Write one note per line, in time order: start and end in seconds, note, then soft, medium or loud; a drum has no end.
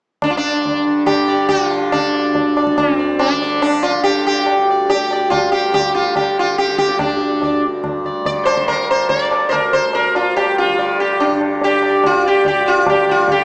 0.22 2.69 G2 medium
0.22 0.30 D4 medium
0.22 tabla na medium
0.22 tabla ge medium
0.30 0.37 F4 medium
0.37 0.83 D4 medium
0.65 tabla tin medium
0.65 tabla ge medium
0.85 1.48 D3 medium
1.06 1.48 G4 medium
1.06 tabla na medium
1.06 tabla ge medium
1.28 1.48 D5 soft
1.28 tabla te medium
1.48 3.31 D3 medium
1.48 1.65 F#4 medium
1.48 tabla tin medium
1.48 tabla ge medium
1.65 1.92 F4 medium
1.71 tabla na medium
1.92 2.80 D4 medium
1.92 tabla na medium
1.92 tabla ge medium
2.10 4.55 D2 medium
2.14 2.34 D5 soft
2.35 tabla tin medium
2.35 tabla ge medium
2.57 2.77 D5 soft
2.57 tabla na medium
2.67 5.18 G2 medium
2.67 tabla ke medium
2.78 2.93 C#4 medium
2.78 tabla na medium
2.78 tabla ge medium
2.93 3.22 C4 medium
2.99 3.19 D5 soft
3.19 3.61 D4 medium
3.19 tabla na medium
3.31 3.94 D3 medium
3.42 3.62 D5 soft
3.62 3.84 D4 medium
3.62 tabla na medium
3.83 4.03 F4 medium
3.83 tabla na medium
3.94 5.79 D3 medium
4.04 4.24 G4 medium
4.04 tabla tin medium
4.27 4.66 G4 medium
4.46 tabla na medium
4.55 7.04 D2 medium
4.70 4.89 D5 soft
4.90 5.30 G4 medium
4.90 tabla tin medium
5.11 5.31 D5 soft
5.11 tabla na medium
5.18 7.65 G2 soft
5.30 5.51 F4 medium
5.30 tabla na medium
5.30 tabla ge medium
5.52 5.73 G4 medium
5.74 5.94 G4 medium
5.74 tabla tin medium
5.74 tabla ge medium
5.79 6.41 D3 soft
5.95 6.16 F4 medium
6.16 6.38 G4 medium
6.16 tabla na medium
6.16 tabla ge medium
6.39 8.24 D3 medium
6.39 6.58 F4 medium
6.58 6.77 G4 medium
6.58 tabla te medium
6.68 tabla te medium
6.78 7.00 G4 medium
6.78 tabla ke medium
6.89 tabla te medium
6.99 7.60 D4 medium
6.99 tabla na medium
6.99 tabla ge medium
7.04 9.47 D2 medium
7.21 7.41 D5 soft
7.42 7.63 D5 soft
7.42 tabla tin medium
7.42 tabla ge medium
7.66 10.08 G2 medium
7.84 tabla na medium
7.84 tabla ge medium
8.05 8.25 D5 soft
8.05 tabla ge soft
8.24 8.83 D3 medium
8.24 8.48 D5 medium
8.24 tabla tin medium
8.24 tabla ge medium
8.45 8.68 C5 medium
8.45 tabla na soft
8.57 tabla ke medium
8.68 8.90 A#4 medium
8.68 tabla na medium
8.68 tabla ge medium
8.83 10.69 D3 medium
8.91 9.09 C5 medium
9.09 9.31 D5 medium
9.09 tabla tin medium
9.09 tabla ge medium
9.31 9.49 D5 soft
9.31 tabla na medium
9.47 11.90 D2 soft
9.47 9.54 C5 medium
9.51 9.74 A#4 medium
9.51 tabla na medium
9.51 tabla ge medium
9.73 9.95 C5 medium
9.73 tabla ge soft
9.93 10.15 A#4 medium
9.93 tabla na medium
10.09 12.51 G2 medium
10.15 10.36 F4 medium
10.15 tabla na soft
10.36 10.58 G4 medium
10.36 tabla na medium
10.58 10.97 F4 medium
10.69 11.30 D3 medium
10.79 10.98 D5 soft
10.79 tabla tin medium
11.00 11.21 G4 medium
11.20 11.40 D4 medium
11.20 tabla na medium
11.30 13.11 D3 medium
11.41 tabla na medium
11.62 12.06 G4 medium
11.62 11.82 D5 soft
11.62 tabla tin medium
11.83 12.04 D5 soft
11.83 tabla na soft
11.91 13.44 D2 medium
12.04 12.26 F4 medium
12.04 tabla na medium
12.04 tabla ge medium
12.26 12.47 G4 medium
12.26 12.45 D5 soft
12.45 12.68 G4 medium
12.45 12.65 D5 soft
12.45 tabla tin medium
12.45 tabla ge medium
12.51 13.44 G2 medium
12.66 12.86 F4 medium
12.66 12.85 D5 soft
12.86 13.10 G4 medium
12.86 13.06 D5 soft
12.86 tabla na medium
12.86 tabla ge medium
13.07 13.44 D3 medium
13.07 13.28 D5 soft
13.07 tabla ge soft
13.11 13.31 F4 medium
13.28 tabla tin medium
13.28 tabla ge medium
13.32 13.44 G4 medium